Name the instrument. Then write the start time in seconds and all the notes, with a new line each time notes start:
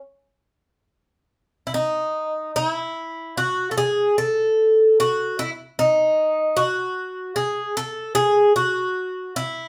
bouzouki
1.67 E4
1.74 D#4
2.56 E4
3.37 F#4
3.71 A4
3.78 G#4
4.18 A4
5.00 F#4
5.39 E4
5.79 D#4
6.57 F#4
7.36 G#4
7.77 A4
8.15 G#4
8.56 F#4
9.36 E4